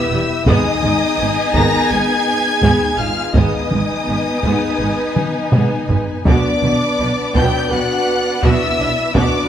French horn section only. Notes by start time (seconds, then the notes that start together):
Already playing: E4
0.47 D#4
1.55 A#4
1.90 G#4
2.99 F4
3.35 D#4
6.26 D4
7.35 B4
7.71 F#4
8.41 E4
9.13 D4